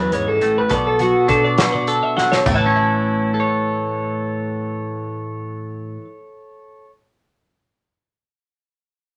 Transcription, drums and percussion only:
0.12 closed hi-hat
0.41 closed hi-hat
0.69 kick, closed hi-hat
0.99 closed hi-hat
1.28 kick, closed hi-hat
1.58 snare, closed hi-hat
1.87 closed hi-hat
2.18 snare
2.32 snare
2.46 kick, floor tom, splash

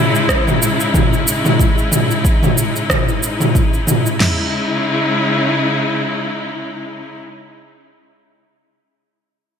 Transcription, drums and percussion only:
0.15 shaker
0.29 kick, cross-stick, shaker
0.47 mid tom, shaker
0.62 shaker
0.80 shaker
0.94 kick, mid tom, shaker
1.13 shaker
1.27 shaker
1.45 mid tom, shaker
1.59 kick, shaker
1.78 shaker
1.92 mid tom, shaker
2.11 shaker
2.25 kick, shaker
2.43 mid tom, shaker
2.58 shaker
2.76 shaker
2.90 kick, cross-stick, mid tom, shaker
3.09 shaker
3.23 shaker
3.41 mid tom, shaker
3.55 kick, shaker
3.74 shaker
3.87 mid tom, shaker
4.06 shaker
4.20 snare, floor tom, crash

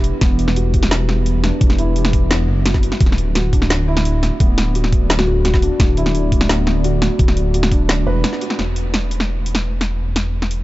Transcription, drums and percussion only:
0.04 closed hi-hat
0.21 kick, snare, closed hi-hat
0.39 closed hi-hat
0.48 snare
0.56 closed hi-hat
0.74 kick, closed hi-hat
0.83 snare
0.91 snare, closed hi-hat
1.09 snare
1.26 closed hi-hat
1.44 snare, closed hi-hat
1.61 kick, closed hi-hat
1.70 snare
1.79 closed hi-hat
1.96 closed hi-hat
2.05 snare
2.13 kick, closed hi-hat
2.31 snare, closed hi-hat
2.66 snare, closed hi-hat
2.74 kick, snare
2.83 closed hi-hat
2.92 snare
3.01 kick, snare, closed hi-hat
3.06 snare
3.12 snare
3.18 closed hi-hat
3.35 snare, closed hi-hat
3.53 kick, closed hi-hat
3.62 snare
3.70 snare, closed hi-hat
3.97 snare
4.05 closed hi-hat
4.23 snare, closed hi-hat
4.40 kick, closed hi-hat
4.58 snare, closed hi-hat
4.75 closed hi-hat
4.84 snare
4.92 kick, closed hi-hat
5.10 snare, closed hi-hat
5.19 snare
5.45 snare, closed hi-hat
5.54 kick, snare
5.62 closed hi-hat
5.80 kick, snare, closed hi-hat
5.97 closed hi-hat
6.06 snare
6.15 closed hi-hat
6.32 kick, closed hi-hat
6.41 snare
6.49 snare, closed hi-hat
6.67 snare
6.84 closed hi-hat
7.02 snare, closed hi-hat
7.19 kick, closed hi-hat
7.28 snare
7.37 closed hi-hat
7.54 closed hi-hat
7.63 snare
7.72 kick, closed hi-hat
7.89 snare, closed hi-hat
8.24 snare, closed hi-hat
8.33 snare
8.41 closed hi-hat
8.50 snare
8.59 snare
8.76 closed hi-hat
8.94 snare
9.11 closed hi-hat
9.20 snare
9.46 closed hi-hat
9.55 snare
9.81 snare, closed hi-hat
10.16 snare, closed hi-hat
10.42 snare
10.51 closed hi-hat

